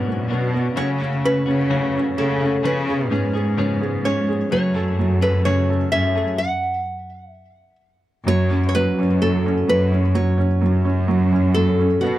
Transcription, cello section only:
0.00 0.30 G#2 medium
0.29 0.73 B2 loud
0.76 1.43 C#3 medium
1.46 2.13 C#3 loud
2.17 2.61 C#3 loud
2.64 3.11 C#3 loud
3.11 4.48 G#2 medium
4.52 5.88 F#2 loud
5.93 6.36 F#2 loud
8.26 8.93 F#2 loud
8.97 9.63 F#2 loud
9.67 10.34 F#2 loud
10.61 11.98 F#2 loud
12.02 12.19 B2 loud

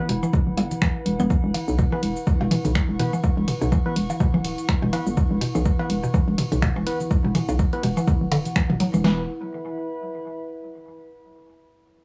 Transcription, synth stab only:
1.92 2.02 E3 medium
1.92 2.02 B3 medium
1.92 2.02 B4 loud
2.99 3.12 E3 medium
2.99 3.12 B3 medium
2.99 3.12 B4 loud
3.86 3.95 E3 loud
3.86 3.95 B3 medium
3.86 3.95 B4 loud
4.93 5.05 E3 medium
4.93 5.05 B3 medium
4.93 5.05 B4 loud
5.79 5.89 E3 medium
5.79 5.89 B3 medium
5.79 5.89 B4 loud
6.87 6.99 E3 medium
6.87 6.99 B3 medium
6.87 6.99 B4 loud
7.73 7.82 E3 medium
7.73 7.82 B3 medium
7.73 7.82 B4 loud
9.04 9.23 E3 medium
9.04 9.23 B3 medium
9.04 9.23 B4 loud

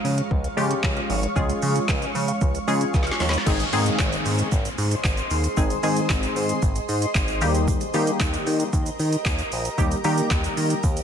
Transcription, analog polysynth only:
0.57 1.13 G#3 medium
0.57 1.13 C#4 medium
0.57 1.13 F4 medium
0.57 1.13 G4 medium
1.36 2.11 G#3 medium
1.36 2.11 C#4 medium
1.36 2.11 F4 medium
1.36 2.11 G#4 loud
2.67 3.24 G#3 medium
2.67 3.24 C#4 medium
2.67 3.24 F4 medium
2.67 3.24 G#4 medium
3.46 3.65 D#3 medium
3.46 3.65 G#3 medium
3.46 3.65 C4 medium
3.46 3.65 D#4 medium
3.46 3.65 G#4 loud
3.73 4.48 D#3 medium
3.73 4.48 G#3 medium
3.73 4.48 C4 medium
3.73 4.48 D#4 medium
3.73 4.48 G#4 loud
5.57 5.76 D#3 medium
5.57 5.76 G#3 medium
5.57 5.76 C4 medium
5.57 5.76 D#4 medium
5.57 5.76 G#4 loud
5.83 6.58 D#3 medium
5.83 6.58 G#3 medium
5.83 6.58 C4 medium
5.83 6.58 D#4 medium
5.83 6.58 G#4 medium
7.41 7.83 D#3 loud
7.41 7.84 G3 medium
7.41 7.84 A#3 medium
7.41 7.84 D#4 medium
7.41 7.84 G4 loud
7.94 8.69 D#3 medium
7.94 8.69 G3 medium
7.94 8.69 A#3 medium
7.94 8.69 D#4 medium
7.94 8.69 G4 loud
9.78 9.97 D#3 medium
9.78 9.97 G3 medium
9.78 9.97 A#3 medium
9.78 9.97 D#4 medium
9.78 9.97 G4 loud
10.04 10.79 D#3 medium
10.04 10.79 G3 medium
10.04 10.79 A#3 medium
10.04 10.79 D#4 medium
10.04 10.79 G4 medium

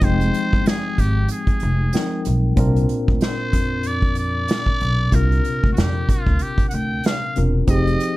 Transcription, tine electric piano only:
0.01 1.89 F3 medium
0.01 1.91 G#3 medium
0.01 1.89 C4 medium
0.01 1.90 D#4 medium
0.01 1.90 G5 medium
1.93 2.57 F3 soft
1.93 2.56 C4 soft
1.93 2.58 D#4 soft
1.93 2.58 A#4 medium
1.93 2.58 G5 soft
2.56 5.08 A#2 medium
2.56 5.08 C4 medium
2.56 5.09 D4 medium
2.56 5.09 F4 medium
2.56 5.10 A#4 medium
5.11 7.31 C3 medium
5.11 7.32 C4 medium
5.11 7.32 D4 medium
5.11 7.33 F4 medium
5.11 7.33 A#4 medium
7.36 7.68 C3 soft
7.36 7.67 C4 soft
7.36 7.68 D4 soft
7.36 7.68 F4 soft
7.36 7.69 A#4 medium
7.67 8.17 F3 medium
7.67 8.17 C4 medium
7.67 8.17 D#4 medium
7.67 8.17 G4 medium
7.71 8.17 G#4 medium

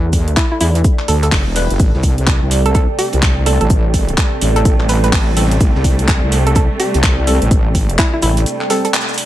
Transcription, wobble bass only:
0.00 0.35 E2 medium
0.61 0.83 E2 loud
1.08 1.31 D2 loud
1.32 1.44 F#1 medium
1.47 1.68 E1 loud
1.70 1.78 F#1 loud
1.80 1.92 A1 loud
1.94 2.40 C2 loud
2.42 2.87 C2 medium
3.13 3.59 C2 loud
3.61 3.69 A1 loud
3.70 4.16 A1 loud
4.42 4.64 A1 loud
4.65 5.12 A1 loud
5.13 5.59 A1 loud
5.61 5.73 A1 loud
5.75 6.21 C2 loud
6.23 6.68 C2 loud
6.94 7.40 C2 loud
7.42 7.50 A1 medium
7.51 7.97 A1 loud
8.23 8.45 A1 loud

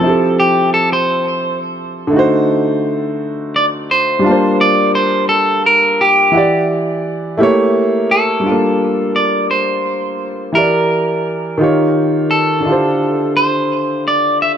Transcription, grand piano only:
0.00 2.07 F3 medium
0.00 2.08 C4 medium
0.00 2.09 E4 medium
0.07 2.11 G4 medium
0.07 2.12 A4 medium
2.07 4.17 D3 medium
2.07 4.18 A3 medium
2.13 4.19 D#4 medium
2.13 4.21 F#4 medium
2.19 4.22 C5 medium
4.19 6.28 G3 medium
4.19 6.29 D4 medium
4.24 6.30 F4 medium
4.24 6.31 A5 medium
4.29 6.33 A#3 medium
4.29 6.34 C5 medium
6.32 7.38 E3 medium
6.32 7.37 E4 medium
6.32 7.39 F#5 medium
6.36 7.39 G4 medium
6.36 7.41 D5 medium
7.37 8.44 A3 medium
7.37 8.46 A#3 medium
7.37 8.44 E4 medium
7.37 8.45 G4 medium
7.43 8.46 C#5 medium
8.40 10.49 G3 medium
8.40 10.50 D4 soft
8.46 10.52 F4 soft
8.46 10.53 A4 soft
8.52 10.55 A#3 medium
10.52 11.59 E3 medium
10.52 11.60 E4 soft
10.52 11.60 G4 medium
10.56 11.61 A#4 medium
10.56 11.62 D5 medium
11.58 12.64 D#3 medium
11.58 12.65 D#4 medium
11.58 12.65 F4 medium
11.62 12.66 G4 medium
11.62 12.67 C#5 medium
12.60 14.57 D3 medium
12.60 14.57 D4 medium
12.65 14.57 E4 soft
12.65 14.57 F4 soft
12.69 14.57 G4 medium
12.69 14.57 C5 medium

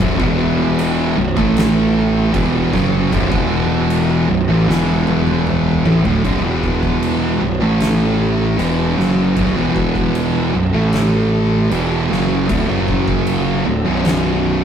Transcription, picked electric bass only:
0.00 0.18 B0 loud
0.20 1.13 E1 medium
1.17 1.35 B0 medium
1.37 2.30 A1 loud
2.34 2.71 E1 loud
2.73 3.09 F#1 medium
3.12 3.30 B0 medium
3.32 4.25 E1 medium
4.29 4.47 B0 medium
4.49 4.67 A1 medium
4.68 5.81 E1 loud
5.85 6.03 A1 medium
6.04 6.22 D1 loud
6.25 6.43 B0 loud
6.43 7.37 E1 medium
7.41 7.59 B0 medium
7.61 8.54 A1 medium
8.58 8.95 E1 loud
8.97 9.34 F#1 medium
9.37 9.55 B0 medium
9.56 10.50 E1 medium
10.54 10.72 B0 medium
10.73 11.67 A1 medium
11.71 12.07 E1 loud
12.10 12.46 F#1 medium
12.49 12.67 D1 medium
12.69 13.62 F#1 loud
13.66 13.84 D1 loud
13.87 14.64 B0 loud

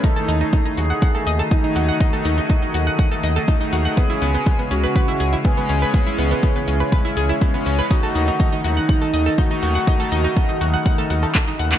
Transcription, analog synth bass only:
0.28 0.44 D#2 loud
0.77 0.93 D#2 medium
1.27 1.42 D#2 loud
1.76 1.91 D#2 medium
2.25 2.40 D#2 loud
2.74 2.90 D#2 medium
3.23 3.39 D#2 loud
3.73 3.88 D#2 medium
4.22 4.37 C#2 loud
4.71 4.86 C#2 medium
5.20 5.35 C#2 medium
5.69 5.85 C#2 medium
6.18 6.34 C#2 loud
6.68 6.83 C#2 medium
7.17 7.32 C#2 loud
7.66 7.81 C#2 medium
8.15 8.31 D#2 loud
8.64 8.80 D#2 medium
9.14 9.29 D#2 medium
9.63 9.78 D#2 medium
10.12 10.27 D#2 loud
10.61 10.76 D#2 medium
11.10 11.26 D#2 medium
11.60 11.75 D#2 loud

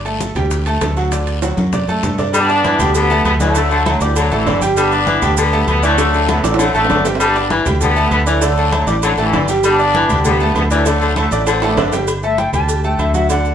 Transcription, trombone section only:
2.35 2.91 B3 medium
2.35 2.91 D4 loud
2.96 3.26 G3 medium
2.96 3.25 B3 loud
3.26 3.33 G3 medium
3.26 3.32 B3 loud
3.41 3.83 F#3 medium
3.41 3.83 A3 loud
3.87 4.01 D3 medium
3.87 4.00 F#3 loud
4.02 4.17 E3 medium
4.02 4.17 G3 medium
4.17 4.32 D3 medium
4.17 4.31 F#3 loud
4.33 4.63 C3 medium
4.33 4.62 E3 loud
4.78 5.35 B3 medium
4.78 5.34 D4 loud
5.38 5.67 G3 medium
5.38 5.66 B3 loud
5.68 5.83 G3 medium
5.68 5.82 B3 loud
5.84 6.27 F#3 medium
5.84 6.26 A3 loud
6.30 6.44 F#3 medium
6.30 6.43 B3 loud
6.44 6.59 F#3 medium
6.44 6.58 A3 medium
6.60 6.74 F#3 medium
6.60 6.73 A3 loud
6.74 7.03 F#3 medium
6.74 7.03 A3 loud
7.21 7.53 B3 medium
7.21 7.52 D4 loud
7.81 8.10 G3 medium
7.81 8.10 B3 loud
8.12 8.20 G3 medium
8.12 8.18 B3 loud
8.27 8.70 F#3 medium
8.27 8.69 A3 medium
8.72 8.88 D3 medium
8.72 8.88 F#3 medium
8.88 8.96 E3 medium
8.88 8.95 G3 medium
9.04 9.11 D3 medium
9.04 9.10 F#3 medium
9.19 9.48 C3 medium
9.19 9.47 E3 loud
9.65 10.22 B3 medium
9.65 10.21 D4 loud
10.26 10.54 G3 medium
10.26 10.54 B3 loud
10.57 10.64 G3 medium
10.57 10.63 B3 loud
10.72 11.15 F#3 medium
10.72 11.14 A3 loud
11.18 11.32 F#3 medium
11.18 11.31 A3 medium
11.33 11.47 F#3 medium
11.33 11.46 A3 medium
11.48 11.62 A3 medium
11.48 11.62 C4 medium
11.64 11.94 B3 medium
11.64 11.93 D4 medium

